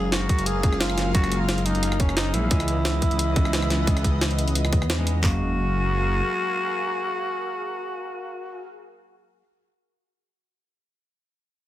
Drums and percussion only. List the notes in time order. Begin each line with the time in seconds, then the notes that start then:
0.12 snare, closed hi-hat
0.29 kick, closed hi-hat
0.39 closed hi-hat
0.46 closed hi-hat
0.63 kick, closed hi-hat
0.73 cross-stick
0.81 snare, closed hi-hat
0.90 cross-stick
0.98 snare, closed hi-hat
1.15 kick, closed hi-hat
1.24 cross-stick, closed hi-hat
1.32 closed hi-hat
1.49 snare, closed hi-hat
1.58 closed hi-hat
1.66 closed hi-hat
1.75 closed hi-hat
1.83 closed hi-hat
1.92 cross-stick
2.00 kick, closed hi-hat
2.09 cross-stick
2.17 snare, closed hi-hat
2.34 closed hi-hat
2.51 kick, closed hi-hat
2.60 cross-stick, closed hi-hat
2.68 closed hi-hat
2.85 snare, closed hi-hat
3.02 kick, closed hi-hat
3.11 closed hi-hat
3.19 closed hi-hat
3.36 kick, closed hi-hat
3.45 cross-stick
3.53 snare, closed hi-hat
3.62 cross-stick
3.70 snare, closed hi-hat
3.87 kick, closed hi-hat
3.97 cross-stick, closed hi-hat
4.04 kick, closed hi-hat
4.21 snare, closed hi-hat
4.31 closed hi-hat
4.39 closed hi-hat
4.48 closed hi-hat
4.55 closed hi-hat
4.65 cross-stick
4.73 kick, closed hi-hat
4.82 cross-stick
4.90 snare, closed hi-hat
5.07 closed hi-hat
5.24 kick, clap, floor tom